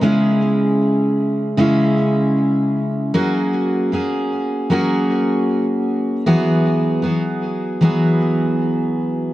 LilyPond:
\new Staff \with { instrumentName = "Steel-string acoustic guitar" } { \time 4/4 \key cis \dorian \tempo 4 = 77 <cis gis cis' e' gis'>2 <cis gis cis' e' gis'>2 | <fis ais cis' fis' gis'>4 <ais cis' fis' gis'>4 <fis ais cis' fis' gis'>2 | <e fis b fis' gis'>4 <fis b fis' gis'>4 <e fis b fis' gis'>2 | }